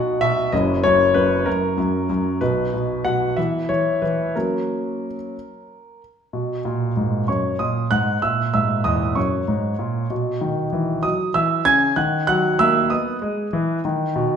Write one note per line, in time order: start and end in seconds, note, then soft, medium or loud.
0.00 0.22 B2 medium
0.00 0.49 D#4 soft
0.00 0.49 F#4 soft
0.00 0.21 F#5 medium
0.21 0.52 B2 medium
0.21 0.52 E5 loud
0.52 0.83 F#1 medium
0.52 0.83 F#2 medium
0.52 2.38 C#4 soft
0.52 2.38 E4 soft
0.52 0.84 D#5 medium
0.84 1.13 F#2 medium
0.84 1.15 C#5 loud
1.14 1.44 F#2 medium
1.14 1.46 B4 medium
1.46 1.76 F#2 medium
1.46 2.41 A#4 medium
1.78 2.08 F#2 medium
2.10 2.40 F#2 medium
2.41 2.72 B1 soft
2.41 2.72 B2 soft
2.41 3.33 B3 soft
2.41 3.33 D#4 soft
2.41 3.04 B4 medium
2.73 3.03 B2 medium
3.05 3.36 B2 soft
3.05 3.37 F#5 medium
3.37 3.68 E3 soft
3.37 4.31 B3 soft
3.37 4.31 E4 soft
3.37 3.69 E5 medium
3.69 4.01 E3 soft
3.69 4.02 C#5 medium
4.02 4.34 E3 soft
4.02 4.35 B4 medium
4.35 5.05 F#3 soft
4.35 5.15 A#3 soft
4.35 5.15 C#4 soft
4.35 6.01 A#4 medium
6.33 6.59 B2 soft
6.65 6.90 A#2 medium
6.97 7.22 G#2 medium
7.28 7.53 F#2 soft
7.28 7.58 C#5 soft
7.28 7.59 C#6 medium
7.59 7.85 A#2 soft
7.59 7.89 D#5 soft
7.59 7.91 D#6 medium
7.91 8.16 G#2 medium
7.91 8.20 F#5 medium
7.91 8.22 F#6 medium
8.22 8.47 A#2 medium
8.22 8.52 E5 medium
8.22 8.52 E6 medium
8.54 8.79 G#2 medium
8.54 8.83 E5 medium
8.54 8.85 E6 medium
8.84 9.10 E2 medium
8.84 9.14 D#5 medium
8.84 9.16 D#6 medium
9.15 9.41 F#2 soft
9.15 10.07 C#5 soft
9.15 10.10 C#6 medium
9.48 9.73 G#2 medium
9.79 10.04 A#2 medium
10.10 10.35 B2 medium
10.41 10.66 D#3 medium
10.73 10.98 E3 medium
11.03 11.29 F#3 soft
11.03 11.33 D#5 soft
11.03 11.34 D#6 medium
11.34 11.60 E3 medium
11.34 11.64 E5 medium
11.34 11.66 E6 medium
11.65 11.91 C#3 medium
11.65 11.95 G#5 medium
11.65 11.97 G#6 loud
11.96 12.22 D#3 medium
11.96 12.26 F#5 medium
11.96 12.26 F#6 medium
12.27 12.53 F#3 medium
12.27 12.57 F#5 medium
12.27 12.59 F#6 medium
12.59 12.84 A#3 medium
12.59 12.89 E5 medium
12.59 12.90 E6 loud
12.90 13.15 B3 medium
12.90 13.80 D#5 medium
12.90 13.84 D#6 medium
13.22 13.47 G#3 medium
13.53 13.78 E3 medium
13.85 14.09 D#3 medium
14.16 14.36 B2 medium